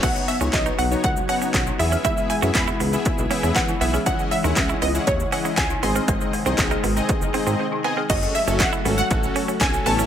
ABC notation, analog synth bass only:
X:1
M:4/4
L:1/16
Q:1/4=119
K:F#dor
V:1 name="Analog synth bass" clef=bass
B,,, z2 C,, B,,,2 B,,,2 C,,2 z2 B,,,2 E,,2 | E,, z2 F,, E,,2 C,,2 z B,,, z E,, E,,2 B,,,2 | C,, z2 D,, C,,2 C,,2 D,,2 z2 C,,2 G,,,2 | G,,, z2 ^B,,, =B,,,2 G,,,2 z F,,, z G,,, z4 |
F,,,2 z F,,,2 z G,,,2 A,,,2 z2 B,,,2 A,,,2 |]